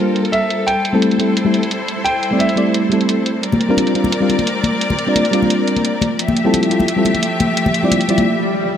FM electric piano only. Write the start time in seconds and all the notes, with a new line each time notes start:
Already playing: G3 A#3 D4 F4 C5
0.93 G3 A3 C4 E4 A4
1.18 G3 A3 C4 E4 A4
1.45 G3 A3 C4 E4 A4
2.31 G3 A3 C4 E4 D5
2.56 G3 A3 C4 E4 D5
2.89 G3 A3 C4 E4
2.94 A4
3.69 G3 C4 D4 F4 A#4
3.94 G3 C4 D4 F4 A#4
4.20 G3 C4 D4 F4 A#4
5.07 G3 C4 D4 F4 D5
5.31 G3 C4 D4 F4
5.35 D5
6.44 G3 C4 E4 F4 A4
6.70 G3 C4 E4 F4 A4
6.96 G3 C4 E4 F4 A4
7.83 G3 C4 E4 F4 D5
8.08 G3 C4 E4 F4 D5